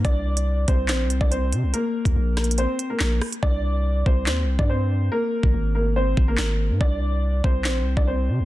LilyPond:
<<
  \new Staff \with { instrumentName = "Grand piano" } { \time 4/4 \key bes \mixolydian \tempo 4 = 142 <d' d''>4. <c' c''>8 <c' c''>8. <d' d''>16 <c' c''>4 | <bes bes'>4. <bes bes'>8 <c' c''>8. <bes bes'>16 <bes bes'>8 r8 | <d' d''>4. <c' c''>8 <c' c''>8. <d' d''>16 <c' c''>4 | <bes bes'>4. <bes bes'>8 <c' c''>8. <bes bes'>16 <bes bes'>4 |
<d' d''>4. <c' c''>8 <c' c''>8. <d' d''>16 <c' c''>4 | }
  \new Staff \with { instrumentName = "808-style bass" } { \clef bass \time 4/4 \key bes \mixolydian c,4. c,8 bes,,16. c,16. c,8. c16 c,16 | r8. d,16 bes,,4~ bes,,16 r8. bes,,8 r8 | c,4. c,8 ees,16. c,16. g,4~ g,16 | r8. aes,,16 aes,,4. aes,,8 aes,,8. aes,16 |
c,4. c,8 bes,,16. c,16. c,8. c16 c,16 | }
  \new DrumStaff \with { instrumentName = "Drums" } \drummode { \time 4/4 <hh bd>8. hh16 r8 <hh bd>8 <hc hh sn>8 hh16 bd16 hh8 hh8 | hh8. <hh bd>16 \tuplet 3/2 { r16 r16 r16 <hh ss sn>16 hh16 hh16 } hh8 hh8 <hc sn>8 <hho ss>16 hh16 | bd4 r8 bd8 <hc sn>8. bd16 r4 | r8. bd16 r4 r8 bd8 <hc sn>4 |
bd4 r8 bd8 <hc sn>8. bd16 r4 | }
>>